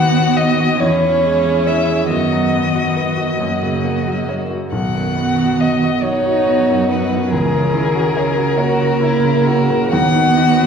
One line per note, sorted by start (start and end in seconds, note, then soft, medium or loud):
0.00 0.76 D#2 medium
0.00 0.78 D#3 soft
0.00 0.83 D#3 soft
0.00 0.30 B3 soft
0.00 0.80 B3 soft
0.00 0.77 F#4 medium
0.00 0.39 F#5 medium
0.17 0.51 F#4 soft
0.37 0.81 D#5 medium
0.37 0.72 D#5 soft
0.60 0.81 F#4 soft
0.80 2.07 E2 soft
0.80 2.08 E3 soft
0.80 2.08 C#4 soft
0.80 2.08 E4 soft
0.80 1.68 C#5 medium
1.02 1.36 E3 soft
1.23 1.58 G#3 soft
1.45 1.80 G#4 soft
1.67 2.02 C#5 soft
1.67 2.11 E5 medium
1.89 2.11 G#4 soft
2.10 3.37 F#2 soft
2.10 3.38 D#3 soft
2.10 3.38 B3 soft
2.10 3.38 F#4 soft
2.10 4.26 D#5 medium
2.32 2.67 F#3 soft
2.54 2.89 B3 soft
2.75 3.10 F#4 soft
2.97 3.32 B4 soft
3.17 3.40 F#4 soft
3.40 4.69 F#2 soft
3.40 4.51 F#3 soft
3.40 4.51 A#3 soft
3.40 4.51 F#4 soft
3.63 3.99 C#3 soft
3.84 4.21 A#3 soft
4.07 4.43 F#4 soft
4.29 4.65 C#5 soft
4.50 4.73 F#4 soft
4.72 7.27 B1 soft
4.72 5.99 D#3 soft
4.72 6.05 B3 soft
4.72 6.00 F#4 soft
4.72 5.62 F#5 medium
4.95 5.30 F#2 soft
5.17 5.52 B3 soft
5.39 5.74 F#4 soft
5.61 6.04 D#5 soft
5.61 5.96 D#5 soft
5.83 6.17 F#4 soft
6.03 7.33 F#3 soft
6.03 7.30 D#4 soft
6.03 7.29 F#4 soft
6.03 6.89 C#5 medium
6.03 6.39 D#5 soft
6.26 6.60 F#4 soft
6.47 6.81 B3 soft
6.69 7.03 F#2 soft
6.90 7.24 B3 soft
6.90 7.32 B4 medium
7.12 7.32 F#2 soft
7.31 9.88 C#2 soft
7.31 7.74 E3 soft
7.31 8.59 C#4 soft
7.31 8.55 G#4 soft
7.31 9.91 A#4 medium
7.54 7.87 C#3 soft
7.74 8.17 D#3 soft
7.74 8.08 E4 soft
7.95 8.29 F#4 soft
8.16 9.92 C#3 soft
8.16 8.50 C#5 soft
8.37 8.71 F#4 soft
8.58 9.93 A#3 soft
8.58 9.01 F#4 medium
8.58 8.92 C#5 soft
8.79 9.15 F#4 soft
9.01 9.37 E4 soft
9.01 9.47 E4 soft
9.24 9.61 C#3 soft
9.46 9.83 E4 soft
9.46 9.90 F#4 soft
9.70 9.92 C#3 soft
9.91 10.67 D#2 soft
9.91 10.67 D#3 soft
9.91 10.67 B3 medium
9.91 10.67 F#4 soft
9.91 10.67 F#5 medium
10.15 10.48 D#3 soft
10.37 10.67 D#4 soft
10.57 10.67 F#4 soft